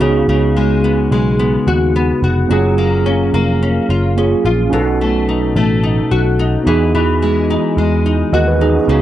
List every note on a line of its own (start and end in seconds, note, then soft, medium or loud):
0.00 0.22 C#2 medium
0.00 0.28 C#3 medium
0.00 0.56 G#3 medium
0.00 2.17 B3 medium
0.00 2.17 D#4 medium
0.00 0.59 F#4 medium
0.00 2.18 F#4 medium
0.00 2.19 G#4 medium
0.28 1.07 C#2 medium
0.28 2.50 C#3 medium
0.56 1.11 G#3 medium
0.84 1.38 B3 medium
1.11 1.56 B1 medium
1.11 2.56 G#3 medium
1.39 1.95 B3 medium
1.67 2.11 D#2 medium
1.67 2.23 F#4 medium
1.96 2.56 B3 medium
2.22 2.45 F1 medium
2.22 3.90 F#4 medium
2.47 3.29 F#1 medium
2.47 6.00 F#3 medium
2.47 4.12 A#3 medium
2.47 4.13 C#4 medium
2.47 4.14 F4 medium
2.52 4.14 G#4 medium
2.78 3.33 A#3 medium
3.06 3.61 C#4 medium
3.34 3.78 F1 medium
3.34 4.78 A#3 medium
3.63 4.16 C#4 medium
3.89 4.34 F#1 medium
3.89 4.44 F4 medium
4.16 4.72 A#3 medium
4.16 4.69 C#4 medium
4.16 4.78 C#4 medium
4.16 4.73 F4 medium
4.16 4.73 G#4 medium
4.45 4.67 A#1 medium
4.45 4.78 F4 medium
4.70 5.52 B1 medium
4.70 6.72 B2 medium
4.70 6.61 C#4 medium
4.70 6.62 D#4 medium
4.70 6.63 F#4 medium
4.74 6.64 A4 medium
5.01 5.55 A3 medium
5.29 5.83 D#4 medium
5.56 6.00 A1 medium
5.56 6.72 A3 medium
5.83 6.39 D#4 medium
6.11 6.56 B1 medium
6.11 6.98 F#4 medium
6.39 6.98 D#4 medium
6.63 7.55 E2 medium
6.63 6.93 E3 medium
6.63 8.83 B3 medium
6.63 8.29 D#4 medium
6.63 8.30 F#4 medium
6.69 8.31 G#4 medium
6.95 8.89 E3 medium
7.22 7.78 G#3 medium
7.50 8.05 D#4 medium
7.77 8.22 E2 loud
7.77 8.94 G#3 medium
8.06 8.60 D#4 medium
8.33 8.77 D#2 loud
8.33 9.02 F#4 medium
8.33 8.47 A#4 medium
8.33 8.46 D#5 medium
8.48 8.61 F#4 medium
8.48 8.60 B4 medium
8.61 8.94 D#4 medium
8.61 8.75 D#4 medium
8.61 8.74 G#4 medium
8.75 9.02 C#4 medium
8.75 8.89 F#4 medium
8.86 9.02 C#2 loud
8.86 9.02 C#3 medium
8.86 9.02 B3 medium
8.86 9.02 D#4 medium
8.86 9.02 F#4 medium
8.92 9.02 G#4 medium